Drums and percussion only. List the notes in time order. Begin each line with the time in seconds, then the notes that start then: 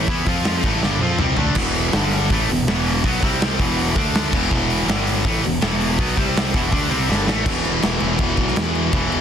0.07 kick, open hi-hat
0.26 kick, open hi-hat
0.44 snare, open hi-hat
0.55 snare
0.63 kick, crash
0.83 snare
0.99 high tom
1.19 mid tom
1.37 floor tom
1.55 kick, crash
1.74 open hi-hat
1.92 snare, open hi-hat
2.12 open hi-hat
2.30 kick, open hi-hat
2.50 open hi-hat
2.67 snare, open hi-hat
2.86 open hi-hat
3.04 kick, open hi-hat
3.23 kick, open hi-hat
3.41 snare, open hi-hat
3.60 kick, open hi-hat
3.79 open hi-hat
3.96 kick, open hi-hat
4.14 snare, open hi-hat
4.33 kick, crash
4.51 kick
4.70 open hi-hat
4.88 snare, open hi-hat
5.07 open hi-hat
5.25 kick, open hi-hat
5.43 open hi-hat
5.61 snare, open hi-hat
5.80 open hi-hat
5.99 kick, open hi-hat
6.17 kick, open hi-hat
6.36 snare, open hi-hat
6.54 kick, open hi-hat
6.72 kick, open hi-hat
6.90 open hi-hat
7.12 snare
7.29 snare
7.46 kick, crash
7.65 crash
7.82 snare, crash
8.00 crash
8.18 kick, crash
8.37 kick, crash
8.48 snare
8.56 snare, crash
8.75 crash
8.93 kick, crash
9.12 crash